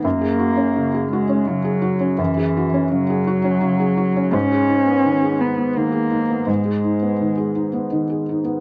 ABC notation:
X:1
M:3/4
L:1/16
Q:1/4=84
K:F#mix
V:1 name="Felt piano"
F,, G F C C, G F C C, G F C | F,, G F C C, G F C C, G F C | G,, G D B, D, G D B, D, G D B, | G,, G D B, D, G D B, D, G D B, |]
V:2 name="Cello" clef=bass
A,6 G,2 F,4 | E,4 F,8 | C6 B,2 A,4 | G,8 z4 |]